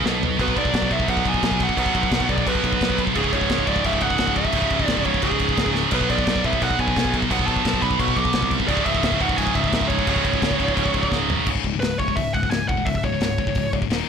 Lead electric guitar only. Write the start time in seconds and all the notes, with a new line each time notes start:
0.41 B4
0.58 D5
0.92 E5
1.10 F#5
1.28 G#5
1.63 F#5
2.29 D5
2.48 B4
3.16 G#4
3.33 C#5
3.69 D5
3.85 E5
4.02 F#5
4.37 E5
4.85 D5
5.06 C#5
5.23 G#4
5.94 B4
6.10 D5
6.45 E5
6.62 F#5
6.79 G#5
7.31 F#5
7.47 A5
7.82 B5
8.00 C#6
8.17 D6
8.68 D5
8.86 E5
9.21 F#5
9.37 G#5
9.55 E5
9.88 C#5
11.80 B4
11.98 C#5
12.16 E5
12.33 F#5
12.50 G#5
12.68 F#5
12.85 E5
13.04 C#5